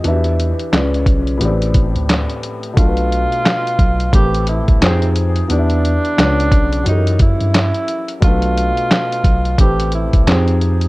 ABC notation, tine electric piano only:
X:1
M:4/4
L:1/16
Q:"Swing 16ths" 1/4=88
K:Am
V:1 name="Tine electric piano" clef=bass
E,,3 z ^C,,2 B,,,2 A,,,3 D,,2 z3 | B,,,3 z3 B,,,2 A,,,3 C,, F,,4 | E,,3 z ^C,,2 B,,,2 ^F,,3 G,,2 z3 | B,,,3 z3 B,,,2 A,,,3 C,, F,,4 |]